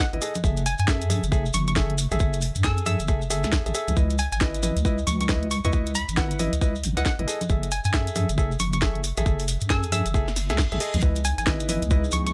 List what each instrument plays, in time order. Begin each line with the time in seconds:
0.00 kick, snare, maracas
0.13 wobble bass G#1, grand piano E4 B4 D#5, closed hi-hat
0.21 grand piano G#4 A4 D#5, open hi-hat, maracas
0.34 closed hi-hat, high conga, maracas
0.44 wobble bass F#1, grand piano G#4 A4 E5, kick, maracas
0.57 closed hi-hat, maracas
0.66 synth pluck G#5, open hi-hat, maracas
0.78 wobble bass F#2, synth pluck G#5, closed hi-hat, maracas
0.88 grand piano G#4 A4 E5, kick, snare, maracas
1.01 closed hi-hat, maracas
1.10 grand piano G#4 A4 E5, open hi-hat, high conga, maracas
1.23 wobble bass F#1, closed hi-hat, maracas
1.32 grand piano G#4 A4 E5, kick, maracas
1.46 maracas
1.54 wobble bass F#1, synth pluck C#6, open hi-hat, high conga, maracas
1.67 synth pluck C#6, closed hi-hat, high conga, maracas
1.76 grand piano G#4 A4 E5, kick, snare, maracas
1.90 closed hi-hat
1.98 open hi-hat, maracas
2.11 wobble bass A1, grand piano G#4 A4 E5, closed hi-hat, maracas
2.19 wobble bass F#1, grand piano G#4 A4 E5, kick, maracas
2.33 closed hi-hat, maracas
2.41 open hi-hat, maracas
2.55 wobble bass F#2, closed hi-hat, maracas
2.64 grand piano G#4 A4 G#5, synth pluck E6, kick, snare, maracas
2.77 closed hi-hat, maracas
2.86 grand piano G#4 A4 E5, synth pluck E6, open hi-hat, high conga, maracas
2.99 wobble bass F#1, closed hi-hat, maracas
3.08 grand piano G#4 A4 E5, kick, maracas
3.22 maracas
3.30 grand piano G#4 A4 E5, open hi-hat, maracas
3.43 wobble bass C#2, snare, closed hi-hat, maracas
3.52 kick, snare, maracas
3.66 wobble bass A1, grand piano G#4 A4 E5, closed hi-hat, maracas
3.74 grand piano G#4 A4 E5, open hi-hat, maracas
3.88 wobble bass C#2, closed hi-hat, high conga, maracas
3.97 wobble bass C#2, grand piano E4 B4 D#5, kick, maracas
4.10 closed hi-hat, maracas
4.18 synth pluck G#5, open hi-hat, maracas
4.32 wobble bass G#1, synth pluck G#5, closed hi-hat, maracas
4.41 grand piano E4 B4 D#5, kick, snare, maracas
4.54 closed hi-hat, maracas
4.63 grand piano E4 B4 D#5, open hi-hat, high conga, maracas
4.76 wobble bass C#2, closed hi-hat, maracas
4.85 grand piano E4 B4 D#5, kick, maracas
4.98 maracas
5.07 wobble bass C#2, synth pluck C#6, open hi-hat, high conga, maracas
5.21 synth pluck C#6, closed hi-hat, high conga, maracas
5.29 grand piano E4 B4 D#5, kick, snare, maracas
5.43 closed hi-hat
5.51 synth pluck C#6, open hi-hat, maracas
5.64 wobble bass E2, grand piano E4 B4 D#5, synth pluck C#6, closed hi-hat, maracas
5.72 grand piano E4 B4 D#5, kick, maracas
5.86 closed hi-hat, maracas
5.95 synth pluck B5, open hi-hat, maracas
6.09 wobble bass G#1, closed hi-hat, maracas
6.17 grand piano E4 B4 F#5, kick, snare, maracas
6.31 closed hi-hat, maracas
6.39 grand piano E4 B4 D#5, open hi-hat, high conga, maracas
6.53 wobble bass C#2, closed hi-hat, maracas
6.61 grand piano E4 B4 D#5, kick, maracas
6.75 maracas
6.83 wobble bass G#1, open hi-hat, maracas
6.97 wobble bass C#2, grand piano E4 B4 D#5, synth pluck F#5, closed hi-hat, maracas
7.05 synth pluck F#5, kick, snare, maracas
7.19 wobble bass G#1, grand piano E4 B4 D#5, closed hi-hat
7.27 grand piano G#4 A4 D#5, open hi-hat, maracas
7.41 closed hi-hat, high conga, maracas
7.49 wobble bass F#1, grand piano G#4 A4 E5, kick, maracas
7.63 closed hi-hat, maracas
7.71 synth pluck G#5, open hi-hat, maracas
7.84 wobble bass F#2, synth pluck G#5, closed hi-hat, maracas
7.94 grand piano G#4 A4 E5, kick, snare, maracas
8.07 closed hi-hat, maracas
8.15 grand piano G#4 A4 E5, open hi-hat, high conga, maracas
8.29 wobble bass F#1, closed hi-hat, maracas
8.38 grand piano G#4 A4 E5, kick, maracas
8.52 maracas
8.59 wobble bass F#1, synth pluck C#6, open hi-hat, high conga, maracas
8.73 synth pluck C#6, closed hi-hat, high conga, maracas
8.82 grand piano G#4 A4 E5, kick, snare, maracas
8.95 closed hi-hat
9.04 open hi-hat, maracas
9.17 wobble bass A1, grand piano G#4 A4 E5, closed hi-hat, maracas
9.26 wobble bass F#1, grand piano G#4 A4 E5, kick, maracas
9.39 open hi-hat, maracas
9.48 open hi-hat, maracas
9.60 wobble bass F#2, closed hi-hat, maracas
9.70 grand piano G#4 A4 G#5, synth pluck E6, kick, snare, maracas
9.83 closed hi-hat, maracas
9.92 grand piano G#4 A4 E5, synth pluck E6, open hi-hat, high conga, maracas
10.06 wobble bass F#1, closed hi-hat, maracas
10.14 grand piano G#4 A4 E5, kick, reverse cymbal, maracas
10.28 snare, maracas
10.36 snare, open hi-hat, maracas
10.49 wobble bass C#2, grand piano G#4 A4 E5, snare, closed hi-hat, maracas
10.58 kick, snare, maracas
10.72 wobble bass A1, grand piano G#4 A4 E5, closed hi-hat, maracas
10.80 grand piano G#4 A4 D#5, open hi-hat, maracas
10.94 wobble bass C#2, closed hi-hat, high conga, maracas
11.02 wobble bass C#2, analog synth pad B3 D#4 E4 G#4, grand piano E4 B4 D#5, kick, maracas
11.16 closed hi-hat, maracas
11.25 synth pluck G#5, open hi-hat, maracas
11.38 wobble bass G#1, synth pluck G#5, closed hi-hat, maracas
11.47 grand piano E4 B4 D#5, kick, snare, maracas
11.60 closed hi-hat, maracas
11.69 grand piano E4 B4 D#5, open hi-hat, high conga, maracas
11.82 wobble bass C#2, closed hi-hat, maracas
11.91 grand piano E4 B4 D#5, kick, maracas
12.04 maracas
12.11 wobble bass C#2, synth pluck C#6, open hi-hat, high conga, maracas
12.27 synth pluck C#6, closed hi-hat, high conga, maracas